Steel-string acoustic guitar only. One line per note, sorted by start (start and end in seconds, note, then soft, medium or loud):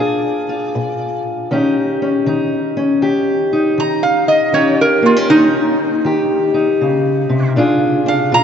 0.00 0.69 A#2 medium
0.00 1.48 D4 medium
0.00 0.48 F4 medium
0.00 1.47 G#4 medium
0.49 1.48 F4 medium
0.75 1.45 A#2 medium
1.51 2.21 D#3 medium
1.51 2.02 C#4 medium
1.51 2.27 D#4 medium
1.51 3.02 G4 medium
2.02 2.76 C#4 medium
2.26 2.97 D#3 medium
2.26 3.51 D#4 medium
2.77 4.50 C#4 medium
3.02 3.72 D#3 medium
3.02 4.53 G4 medium
3.53 4.50 D#4 medium
3.78 4.48 D#3 medium
4.52 5.23 D#3 medium
4.52 5.02 C#4 medium
4.52 5.29 D#4 medium
4.52 6.05 G4 medium
5.02 5.16 A#3 medium
5.16 5.79 C#4 soft
5.30 6.00 D#3 medium
5.30 6.53 D#4 medium
6.05 6.75 D#3 medium
6.05 7.56 G4 medium
6.54 7.52 D#4 medium
6.81 7.29 C#3 medium
7.29 7.55 C3 medium
7.56 8.26 A#2 medium
7.56 8.06 D4 medium
7.56 8.32 F4 medium
7.56 8.44 G#4 medium
8.06 8.44 D4 medium
8.31 8.44 A#2 medium
8.31 8.44 F4 medium